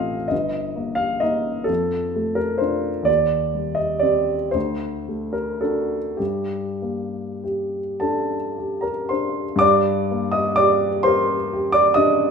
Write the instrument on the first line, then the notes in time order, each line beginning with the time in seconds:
grand piano
Already playing: A1 A3 C4 F4 C5 D#5 F5
0.28 G1 D#5
0.76 A#3
0.95 F5
1.20 A#3 D#4 D#5
1.64 F2 A4
2.16 A3
2.35 A#4
2.58 D4 F4 C5
3.03 D#2 D5
3.55 G3
3.75 D#5
3.99 C4 G4 D5
4.51 D2 C5
5.08 A3
5.33 A#4
5.61 D4 F#4 A4
6.17 G2 G4
6.82 A#3
7.44 G4
8.00 D4 A4 A5
8.58 G4
8.81 A#4 A#5
9.09 D4 C5 C6
9.56 G2 D6
9.61 D5
10.11 A#3
10.32 D#5 D#6
10.56 G4 D5 D6
11.03 A#4 C5 C6
11.53 G4
11.72 D5 D6
11.94 D4 D#5 D#6